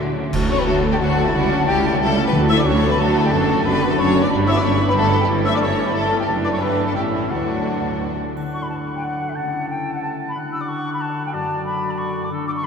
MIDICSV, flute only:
0, 0, Header, 1, 2, 480
1, 0, Start_track
1, 0, Key_signature, 2, "major"
1, 0, Tempo, 331675
1, 476, Time_signature, 3, 2, 24, 8
1, 9575, Tempo, 347423
1, 12455, Tempo, 328048
1, 18260, End_track
2, 0, Start_track
2, 0, Title_t, "Flute"
2, 0, Program_c, 0, 73
2, 722, Note_on_c, 0, 85, 74
2, 844, Note_on_c, 0, 83, 61
2, 866, Note_off_c, 0, 85, 0
2, 953, Note_off_c, 0, 83, 0
2, 962, Note_on_c, 0, 81, 79
2, 1318, Note_off_c, 0, 81, 0
2, 1325, Note_on_c, 0, 79, 63
2, 1380, Note_off_c, 0, 79, 0
2, 1445, Note_on_c, 0, 78, 76
2, 1793, Note_off_c, 0, 78, 0
2, 1802, Note_on_c, 0, 76, 53
2, 1916, Note_off_c, 0, 76, 0
2, 1925, Note_on_c, 0, 78, 78
2, 2393, Note_off_c, 0, 78, 0
2, 2402, Note_on_c, 0, 79, 83
2, 2780, Note_on_c, 0, 78, 65
2, 2801, Note_off_c, 0, 79, 0
2, 2876, Note_off_c, 0, 78, 0
2, 2885, Note_on_c, 0, 81, 81
2, 2972, Note_off_c, 0, 81, 0
2, 3245, Note_on_c, 0, 83, 59
2, 3361, Note_off_c, 0, 83, 0
2, 3608, Note_on_c, 0, 88, 86
2, 3661, Note_off_c, 0, 88, 0
2, 3730, Note_on_c, 0, 86, 65
2, 3851, Note_on_c, 0, 85, 80
2, 3873, Note_off_c, 0, 86, 0
2, 4198, Note_off_c, 0, 85, 0
2, 4207, Note_on_c, 0, 83, 67
2, 4333, Note_on_c, 0, 81, 82
2, 4354, Note_off_c, 0, 83, 0
2, 4682, Note_off_c, 0, 81, 0
2, 4690, Note_on_c, 0, 79, 61
2, 4814, Note_on_c, 0, 81, 83
2, 4836, Note_off_c, 0, 79, 0
2, 5290, Note_on_c, 0, 83, 84
2, 5312, Note_off_c, 0, 81, 0
2, 5634, Note_off_c, 0, 83, 0
2, 5642, Note_on_c, 0, 81, 67
2, 5750, Note_off_c, 0, 81, 0
2, 5758, Note_on_c, 0, 85, 87
2, 6107, Note_off_c, 0, 85, 0
2, 6114, Note_on_c, 0, 86, 52
2, 6230, Note_off_c, 0, 86, 0
2, 6477, Note_on_c, 0, 88, 87
2, 6529, Note_off_c, 0, 88, 0
2, 6598, Note_on_c, 0, 86, 83
2, 6691, Note_off_c, 0, 86, 0
2, 6699, Note_on_c, 0, 85, 81
2, 7050, Note_off_c, 0, 85, 0
2, 7060, Note_on_c, 0, 83, 63
2, 7172, Note_on_c, 0, 81, 78
2, 7194, Note_off_c, 0, 83, 0
2, 7515, Note_off_c, 0, 81, 0
2, 7523, Note_on_c, 0, 79, 48
2, 7581, Note_off_c, 0, 79, 0
2, 7883, Note_on_c, 0, 88, 82
2, 8002, Note_off_c, 0, 88, 0
2, 8013, Note_on_c, 0, 86, 75
2, 8122, Note_off_c, 0, 86, 0
2, 8130, Note_on_c, 0, 85, 71
2, 8217, Note_off_c, 0, 85, 0
2, 8490, Note_on_c, 0, 83, 61
2, 8611, Note_on_c, 0, 81, 73
2, 8633, Note_off_c, 0, 83, 0
2, 8954, Note_off_c, 0, 81, 0
2, 8962, Note_on_c, 0, 79, 50
2, 9019, Note_off_c, 0, 79, 0
2, 9327, Note_on_c, 0, 86, 74
2, 9383, Note_off_c, 0, 86, 0
2, 9447, Note_on_c, 0, 85, 53
2, 9503, Note_off_c, 0, 85, 0
2, 9576, Note_on_c, 0, 83, 65
2, 9659, Note_off_c, 0, 83, 0
2, 9913, Note_on_c, 0, 81, 47
2, 9969, Note_off_c, 0, 81, 0
2, 10027, Note_on_c, 0, 79, 51
2, 10110, Note_off_c, 0, 79, 0
2, 10278, Note_on_c, 0, 76, 52
2, 10524, Note_on_c, 0, 78, 50
2, 10545, Note_off_c, 0, 76, 0
2, 11752, Note_off_c, 0, 78, 0
2, 12228, Note_on_c, 0, 85, 64
2, 12352, Note_on_c, 0, 83, 47
2, 12372, Note_off_c, 0, 85, 0
2, 12439, Note_off_c, 0, 83, 0
2, 12448, Note_on_c, 0, 81, 59
2, 12535, Note_off_c, 0, 81, 0
2, 12829, Note_on_c, 0, 79, 48
2, 12947, Note_on_c, 0, 78, 62
2, 12969, Note_off_c, 0, 79, 0
2, 13317, Note_on_c, 0, 76, 45
2, 13339, Note_off_c, 0, 78, 0
2, 13416, Note_off_c, 0, 76, 0
2, 13425, Note_on_c, 0, 78, 57
2, 13901, Note_off_c, 0, 78, 0
2, 13910, Note_on_c, 0, 79, 58
2, 14265, Note_off_c, 0, 79, 0
2, 14282, Note_on_c, 0, 78, 49
2, 14390, Note_off_c, 0, 78, 0
2, 14398, Note_on_c, 0, 81, 60
2, 14486, Note_off_c, 0, 81, 0
2, 14775, Note_on_c, 0, 83, 50
2, 14887, Note_off_c, 0, 83, 0
2, 15123, Note_on_c, 0, 88, 60
2, 15247, Note_on_c, 0, 86, 48
2, 15269, Note_off_c, 0, 88, 0
2, 15355, Note_on_c, 0, 85, 65
2, 15377, Note_off_c, 0, 86, 0
2, 15712, Note_off_c, 0, 85, 0
2, 15722, Note_on_c, 0, 83, 54
2, 15832, Note_on_c, 0, 81, 64
2, 15854, Note_off_c, 0, 83, 0
2, 16189, Note_off_c, 0, 81, 0
2, 16197, Note_on_c, 0, 79, 49
2, 16309, Note_off_c, 0, 79, 0
2, 16317, Note_on_c, 0, 81, 65
2, 16770, Note_off_c, 0, 81, 0
2, 16778, Note_on_c, 0, 83, 67
2, 17146, Note_on_c, 0, 81, 56
2, 17168, Note_off_c, 0, 83, 0
2, 17251, Note_on_c, 0, 85, 69
2, 17272, Note_off_c, 0, 81, 0
2, 17634, Note_on_c, 0, 86, 44
2, 17656, Note_off_c, 0, 85, 0
2, 17745, Note_off_c, 0, 86, 0
2, 17978, Note_on_c, 0, 86, 73
2, 18031, Note_off_c, 0, 86, 0
2, 18107, Note_on_c, 0, 85, 62
2, 18240, Note_off_c, 0, 85, 0
2, 18260, End_track
0, 0, End_of_file